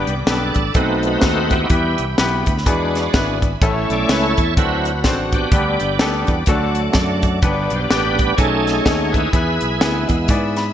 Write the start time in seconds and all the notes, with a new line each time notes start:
Already playing: G2 G3 B3 D4 G4 B4 D5 G5 B5 D6
0.07 C2, closed hi-hat
0.27 B1 B3 D4 G4 A4 B4, snare, closed hi-hat
0.54 A1, kick, closed hi-hat
0.74 B1 B2 A3 C4 D#4 F#4 A4 B4 D#5 A5, kick, closed hi-hat
1.03 D#4 F#4 B4, closed hi-hat
1.21 D#2 C4 D#4 A4 C5, kick, snare, closed hi-hat
1.50 B3 E4 G4, kick, closed hi-hat
1.70 E2 E3 G3 B3 E4 G4 B4 E5 G5 B5, kick, closed hi-hat
1.98 C2, closed hi-hat
2.18 B1 B3 E4 G4 B4, snare, closed hi-hat
2.46 D2, kick, closed hi-hat
2.58 snare
2.65 E2 E3 G#3 B3 D4 E4 F#4 G#4 D5 G#5, kick, closed hi-hat
2.95 snare, closed hi-hat
3.13 G#1 B3 D4 E4 B4, kick, snare, closed hi-hat
3.42 kick, closed hi-hat
3.61 A1 A2 A3 C#4 E4 A4 C#5 A5 C#6, kick, closed hi-hat
3.90 B1 D5, closed hi-hat
4.09 C#2 A3 C#4 E4 A4 B4 C#5, snare, closed hi-hat
4.37 E2, kick, closed hi-hat
4.55 D2 D3 F#3 C4 D4 F#4 A4 D5 F#5 A5, kick, closed hi-hat
4.59 E4 B4
4.85 closed hi-hat
5.04 A1 C4 D4 F#4 A4 C5, kick, snare, closed hi-hat
5.32 B3 D4 G4, kick, closed hi-hat
5.51 D2 D3 G3 B3 D4 G4 B4 G5 B5 D6, kick, closed hi-hat
5.80 G1, closed hi-hat
5.99 D2 B3 D4 G4 A4, snare, closed hi-hat
6.27 E2, kick, closed hi-hat
6.46 D2 D3 F#3 A3 D4 F#4 A4 F#5 A5, kick, closed hi-hat
6.75 closed hi-hat
6.93 F#2 D5, kick, snare, closed hi-hat
7.22 F#5, kick, closed hi-hat
7.42 G1 G2 G3 B3 D4 G4 B4 G5 B5, kick, closed hi-hat
7.70 B1, closed hi-hat
7.75 C5
7.90 A1 B3 D4 G4 B4 D5, snare, closed hi-hat
8.19 kick, closed hi-hat
8.36 B1 B2 A3 C#4 D#4 G#4 A4 D#5 F#5 G#5 C#6, kick, closed hi-hat
8.67 snare, closed hi-hat
8.83 D#2 C#4 D#4 G#4 A4 C#5, kick, snare, closed hi-hat
9.12 E4 G#4 B4, kick, closed hi-hat
9.33 E2 E3 B3 E4 G#4 B4 E5 B5 E6, kick, closed hi-hat
9.61 B1, closed hi-hat
9.81 D2 B3 E4 G#4 B4, snare, closed hi-hat
10.07 E2 G#3 B3 E4, kick, closed hi-hat
10.28 G#2 B3 E4 G#4 D5, kick, closed hi-hat
10.56 B5, snare, closed hi-hat